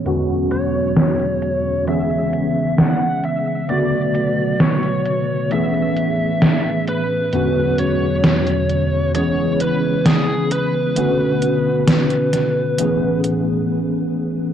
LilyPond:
<<
  \new Staff \with { instrumentName = "Lead electric guitar" } { \time 4/4 \key a \major \tempo 4 = 66 r8 cis''4. e''4 fis''8 e''8 | d''4 cis''4 e''4. b'8~ | b'8 cis''4. cis''8 b'8 gis'8 b'8~ | b'2~ b'8 r4. | }
  \new Staff \with { instrumentName = "Tine electric piano" } { \time 4/4 \key a \major <e, d gis b cis' fis'>2 <e gis b cis' gis'>2 | <cis d a b fis'>2 <e a b cis' gis'>2 | <e, d gis b cis' fis'>2 <e gis b cis' gis'>2 | <d a b cis' fis'>2 <e a b cis' gis'>4 r4 | }
  \new Staff \with { instrumentName = "Ambient pad" } { \clef bass \time 4/4 \key a \major << { <e, b, cis''>2 e''2 | b'1 | <e, b, cis''>2 e'2 | d2 r2 | } \\ { <d fis gis'>2 <cis b>2 | <b, fis a>2 <a, gis'>2 | <d fis>2 <cis b>2 | <b, a cis'>2 <a, gis'>4 r4 | } >> }
  \new DrumStaff \with { instrumentName = "Drums" } \drummode { \time 4/4 hh8 hh8 <hh sn>16 hh16 hh8 hh8 hh8 <hh sn>8 hh8 | hh8 hh8 <hh sn>16 hh16 hh8 hh8 hh8 <hh sn>8 hh8 | hh8 hh8 <hh sn>16 hh16 hh8 hh8 hh8 <hh sn>8 hh8 | hh8 hh8 <hh sn>16 hh16 <hh sn>8 hh8 hh8 r4 | }
>>